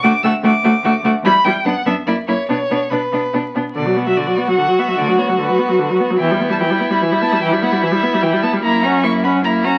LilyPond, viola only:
\new Staff \with { instrumentName = "Viola" } { \clef bass \time 3/4 \key b \minor \tempo 4 = 148 a8 a8 a8 a8 a8 a8 | g8 g8 b8 b8 ais8 ais8 | b8 b8 b8 b8 b8 b8 | d16 fis16 b16 fis16 d16 fis16 b16 fis16 d16 fis16 b16 fis16 |
d16 fis16 b16 fis16 d16 fis16 b16 fis16 d16 fis16 b16 fis16 | e16 g16 b16 g16 e16 g16 b16 g16 e16 g16 b16 g16 | e16 g16 b16 g16 e16 g16 b16 g16 e16 g16 b16 g16 | ais8 cis'8 ais8 cis'8 ais8 cis'8 | }